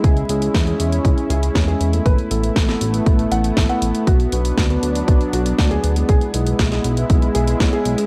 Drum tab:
HH |xxxxxxxxxxxxxxxx|xxxxxxxxxxxxxxxx|xxxxxxxxxxxxxxxx|xxxxxxxxxxxxxxxx|
SD |----o-------o---|----oo------o---|----o-------o---|----oo------o---|
BD |o---o---o---o---|o---o---o---o---|o---o---o---o---|o---o---o---o---|